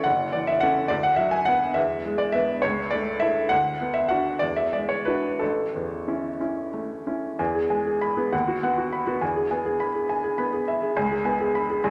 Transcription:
0.04 0.88 F#1 medium
0.04 0.33 F#5 medium
0.32 0.79 E3 soft
0.32 0.47 D5 medium
0.47 0.62 E5 medium
0.60 0.88 C#4 soft
0.60 0.88 A4 soft
0.60 0.89 F#5 medium
0.88 1.73 D2 medium
0.88 1.03 D5 medium
1.03 1.18 F#5 medium
1.16 1.64 F#3 soft
1.16 1.31 E5 medium
1.31 1.46 G#5 medium
1.45 1.73 B3 soft
1.45 1.74 B4 medium
1.45 1.75 F#5 medium
1.74 2.61 E2 medium
1.74 2.19 E5 medium
2.05 2.52 G#3 soft
2.18 2.34 D5 medium
2.32 2.61 B3 soft
2.32 2.61 B4 soft
2.32 2.63 E5 medium
2.62 3.48 C#2 medium
2.62 2.92 C#5 medium
2.91 3.39 A3 soft
2.91 3.21 D5 medium
3.20 3.48 E4 soft
3.20 3.48 A4 soft
3.20 3.50 E5 medium
3.49 4.38 D2 medium
3.49 3.94 F#5 medium
3.81 4.29 B3 soft
3.94 4.09 E5 medium
4.08 4.38 D4 soft
4.08 4.38 F#4 soft
4.08 4.40 F#5 medium
4.39 5.37 E2 soft
4.39 4.56 D5 medium
4.56 4.73 E5 medium
4.73 5.27 G#3 soft
4.73 4.89 D5 medium
4.89 5.06 C#5 medium
5.05 5.38 D4 soft
5.05 5.37 F#4 soft
5.05 5.40 B4 medium
5.39 7.35 A1 soft
5.39 6.40 A4 medium
5.75 6.27 E2 soft
6.08 6.37 C#4 soft
6.08 6.37 E4 soft
6.40 6.69 C#4 soft
6.40 6.69 E4 soft
6.74 7.26 A3 soft
7.07 7.36 C#4 soft
7.07 7.36 E4 soft
7.39 8.30 E2 medium
7.39 7.64 G#5 soft
7.55 7.80 G#4 soft
7.70 7.95 G#3 soft
7.70 7.95 G#5 soft
7.86 8.11 G#4 soft
8.01 8.26 B5 medium
8.17 8.32 B3 soft
8.17 8.32 G#4 soft
8.32 9.19 D#2 medium
8.32 8.56 F#5 soft
8.48 8.71 F#4 soft
8.63 8.86 B3 soft
8.63 8.86 F#5 soft
8.78 9.01 F#4 soft
8.93 9.16 B5 medium
9.07 9.21 B3 soft
9.07 9.21 F#4 soft
9.21 10.92 E2 medium
9.21 9.45 G#5 medium
9.36 9.60 G#4 soft
9.51 9.74 B3 soft
9.51 9.74 G#5 soft
9.65 9.89 G#4 soft
9.80 10.04 B5 soft
9.95 10.18 G#4 soft
10.09 10.33 G#5 medium
10.24 10.47 G#4 soft
10.38 10.62 B3 soft
10.38 10.61 B5 soft
10.53 10.76 G#4 soft
10.68 10.91 E5 medium
10.82 10.96 G#4 soft
10.97 11.82 C#2 medium
10.97 11.20 G#5 medium
11.11 11.34 G#4 medium
11.25 11.48 B3 soft
11.25 11.49 G#5 medium
11.40 11.64 G#4 medium
11.55 11.78 B5 medium
11.70 11.84 G#4 soft
11.84 11.90 C2 medium
11.84 11.90 G#5 medium

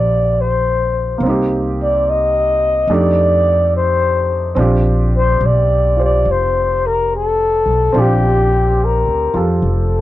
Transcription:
0.00 1.17 A#1 medium
0.00 1.16 A#3 soft
0.00 1.21 C4 soft
0.00 1.23 F4 soft
0.00 1.25 G4 soft
0.00 0.42 D5 medium
0.41 1.23 C5 medium
1.18 2.85 C2 medium
1.18 2.88 A#3 soft
1.23 2.90 C4 soft
1.23 2.89 D#4 soft
1.29 2.89 G4 soft
1.82 2.11 D5 medium
2.10 2.95 D#5 medium
2.87 4.53 F2 medium
2.87 4.58 A3 soft
2.87 4.55 D4 soft
2.87 4.58 D#4 soft
2.87 4.58 G4 soft
2.94 3.76 D5 medium
3.76 4.55 C5 medium
4.55 5.37 A#1 medium
4.55 7.91 C4 soft
4.55 7.93 D4 soft
4.55 5.95 F4 soft
4.60 5.97 G4 soft
5.17 5.47 C5 medium
5.41 6.21 B1 medium
5.46 6.00 D5 medium
5.97 7.94 F4 soft
5.97 7.95 G4 soft
5.97 7.95 C5 soft
6.04 6.33 D5 medium
6.25 7.62 F1 medium
6.31 6.88 C5 medium
6.86 7.12 A#4 medium
7.15 8.01 A4 medium
7.66 7.92 B1 medium
7.92 9.02 A#1 medium
7.92 10.01 C4 medium
7.92 10.01 D4 soft
7.92 9.33 F4 soft
7.98 9.33 G4 medium
7.98 8.86 G4 medium
8.85 9.48 A#4 medium
9.06 9.32 D2 soft
9.34 9.60 F2 medium
9.34 10.01 F4 soft
9.34 10.01 G4 soft
9.34 10.01 A4 soft
9.62 10.01 F1 medium
9.69 10.01 A4 medium

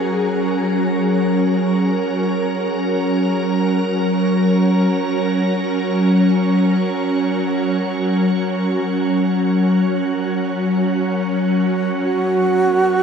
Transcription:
0.00 11.99 F#3 medium
0.00 13.03 F#3 medium
0.00 13.03 C#4 medium
0.00 4.05 G#4 medium
0.00 13.03 A#4 medium
12.00 13.03 F#3 medium
12.00 13.03 F#4 loud
12.17 13.03 C#5 medium
12.34 13.03 B3 medium

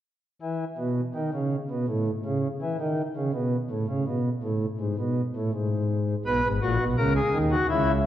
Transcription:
0.42 0.64 E3 medium
0.78 1.00 B2 medium
1.15 1.30 D#3 medium
1.33 1.56 C#3 medium
1.71 1.86 B2 medium
1.88 2.11 A2 medium
2.25 2.48 C#3 medium
2.61 2.77 E3 medium
2.80 3.02 D#3 medium
3.16 3.31 C#3 medium
3.34 3.56 B2 medium
3.70 3.86 A2 medium
3.89 4.04 C#3 medium
4.07 4.29 B2 medium
4.43 4.66 A2 medium
4.79 4.95 G#2 medium
4.98 5.21 B2 medium
5.36 5.51 A2 medium
5.53 6.15 G#2 medium
6.25 6.41 B1 medium
6.25 6.41 B2 medium
6.25 6.48 B4 medium
6.44 6.59 G#1 medium
6.44 6.59 G#2 medium
6.62 6.77 A#1 medium
6.62 6.77 A#2 medium
6.62 6.84 F#4 medium
6.80 6.95 B1 medium
6.80 6.95 B2 medium
6.97 7.20 C#2 medium
6.97 7.20 C#3 medium
6.97 7.13 A#4 medium
7.15 7.38 G#4 medium
7.33 7.56 D#2 medium
7.33 7.55 D#3 medium
7.51 7.67 F#4 medium
7.69 8.06 C#2 medium
7.69 8.06 C#3 medium
7.69 7.92 E4 medium

